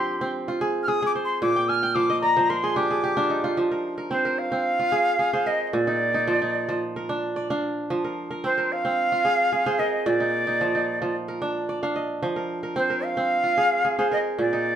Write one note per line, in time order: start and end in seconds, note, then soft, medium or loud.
0.00 1.46 F3 medium
0.00 0.21 C4 medium
0.00 0.55 D4 medium
0.00 0.67 G4 medium
0.00 0.94 A#4 medium
0.00 0.59 C5 medium
0.00 0.33 C6 medium
0.21 2.01 C4 medium
0.48 1.99 F4 medium
0.61 0.88 G#4 medium
0.83 0.89 F6 medium
0.88 1.02 G#4 medium
0.88 1.05 D#6 medium
1.02 1.62 G#4 medium
1.02 1.12 D6 medium
1.15 2.34 C5 medium
1.24 1.40 C6 medium
1.41 3.62 A#2 medium
1.41 1.69 D6 loud
1.56 1.82 G5 medium
1.68 2.59 G#5 medium
1.68 1.96 F6 loud
1.83 2.70 G5 medium
1.94 2.36 F3 medium
1.94 2.95 F5 medium
1.94 2.20 D6 loud
2.10 2.82 D#5 medium
2.21 3.36 D5 medium
2.21 2.51 A#5 medium
2.37 3.56 F3 medium
2.37 3.55 C5 medium
2.49 3.71 A#4 medium
2.49 2.78 C6 medium
2.64 2.90 G#4 medium
2.76 3.16 D4 medium
2.76 3.03 G4 medium
2.76 3.57 D6 medium
2.91 4.27 G#4 medium
3.04 4.45 G4 medium
3.17 4.85 D4 medium
3.17 3.44 F4 medium
3.30 4.92 D#4 medium
3.44 4.79 F4 medium
3.57 5.78 F3 medium
3.71 3.97 A#4 medium
3.98 4.25 A#4 medium
4.11 4.51 C4 medium
4.11 4.39 C5 medium
4.25 5.46 A#4 medium
4.38 5.48 F5 loud
4.52 6.32 C4 medium
4.79 6.31 F4 medium
4.92 5.19 G#4 medium
5.19 5.33 G#4 medium
5.33 6.70 G#4 medium
5.33 6.52 C5 medium
5.46 6.73 A#4 medium
5.46 5.66 D#5 medium
5.66 5.74 D#5 medium
5.73 7.95 A#2 medium
5.73 6.81 D5 medium
5.87 6.14 D#4 medium
6.14 6.41 D#4 medium
6.27 6.67 F3 medium
6.42 7.15 D#4 medium
6.69 7.89 F3 medium
6.96 8.04 A#4 medium
7.09 7.50 D4 medium
7.36 8.47 D5 medium
7.50 9.18 D4 medium
7.50 8.50 F5 medium
7.90 10.12 F3 medium
8.04 8.30 A#4 medium
8.31 8.57 A#4 medium
8.44 8.84 C4 medium
8.44 8.73 C5 medium
8.58 9.79 A#4 medium
8.72 9.80 F5 loud
8.85 10.65 C4 medium
9.12 10.63 F4 medium
9.25 9.52 G#4 medium
9.52 9.66 G#4 medium
9.66 11.03 G#4 medium
9.66 10.85 C5 medium
9.78 11.07 A#4 medium
9.78 10.07 D#5 medium
10.06 12.28 A#2 medium
10.06 11.14 D5 medium
10.20 10.47 D#4 medium
10.47 10.74 D#4 medium
10.61 11.00 F3 medium
10.75 11.48 D#4 medium
11.02 12.21 F3 medium
11.28 12.36 A#4 medium
11.42 11.83 D4 medium
11.69 12.80 D5 medium
11.83 13.51 D4 medium
11.83 12.83 F5 medium
11.96 13.03 D#5 medium
12.23 14.44 F3 medium
12.36 12.63 A#4 medium
12.63 12.90 A#4 medium
12.76 13.17 C4 medium
12.76 13.05 C5 medium
12.90 14.11 A#4 medium
13.04 14.12 F5 loud
13.17 14.76 C4 medium
13.44 14.76 F4 medium
13.58 13.84 G#4 medium
13.85 13.98 G#4 medium
13.99 14.76 G#4 medium
13.99 14.76 C5 medium
14.12 14.76 A#4 medium
14.12 14.18 D#5 medium
14.39 14.76 A#2 medium
14.39 14.76 D5 medium
14.53 14.76 D#4 medium